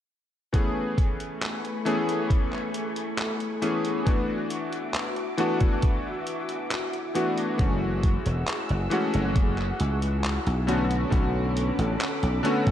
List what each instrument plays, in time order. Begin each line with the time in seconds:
0.53 electric grand piano E3 A3 B3 C#4 G#4, string machine A3 G#5 B5 C#6, kick, closed hi-hat
0.98 kick, closed hi-hat
1.20 closed hi-hat
1.42 clap, closed hi-hat
1.65 closed hi-hat
1.85 electric grand piano E3 A3 B3 C#4 G#4, closed hi-hat
2.09 closed hi-hat
2.30 kick, closed hi-hat
2.53 clap
2.74 closed hi-hat
2.96 closed hi-hat
3.18 clap, closed hi-hat
3.40 closed hi-hat
3.62 electric grand piano E3 A3 B3 C#4 G#4, closed hi-hat
3.85 closed hi-hat
4.05 electric grand piano E3 A3 B3 D4 F#4, string machine F#4 E5 D6, kick, closed hi-hat
4.50 closed hi-hat
4.73 closed hi-hat
4.94 clap, closed hi-hat
5.16 closed hi-hat
5.37 electric grand piano E3 A3 B3 D4 F#4, closed hi-hat
5.61 kick, closed hi-hat
5.82 kick, closed hi-hat
6.27 closed hi-hat
6.49 closed hi-hat
6.71 clap, closed hi-hat
6.93 closed hi-hat
7.14 electric grand piano E3 A3 B3 D4 F#4, closed hi-hat
7.38 closed hi-hat
7.58 slap bass F#1, electric grand piano E3 G#3 A3 C#4 F#4, string machine G#4 F#5 E6, kick, closed hi-hat
8.03 kick, closed hi-hat
8.26 slap bass E1, closed hi-hat
8.48 clap, closed hi-hat
8.69 slap bass F#1, closed hi-hat
8.90 electric grand piano E3 G#3 A3 C#4 F#4, closed hi-hat
9.14 slap bass F#1, closed hi-hat
9.36 kick, closed hi-hat
9.58 clap
9.80 slap bass C#2, closed hi-hat
10.02 closed hi-hat
10.24 clap, closed hi-hat
10.47 slap bass B1, closed hi-hat
10.67 electric grand piano D3 A3 B3 C#4 F#4, string machine C#4 A4 B5 D6, closed hi-hat
10.91 closed hi-hat
11.10 slap bass B1, electric grand piano D3 A3 B3 C#4 F#4, kick, closed hi-hat
11.57 closed hi-hat
11.78 slap bass A1, closed hi-hat
12.01 clap, closed hi-hat
12.23 slap bass B1, closed hi-hat
12.43 electric grand piano D3 A3 B3 C#4 F#4, closed hi-hat
12.67 slap bass B1, kick, closed hi-hat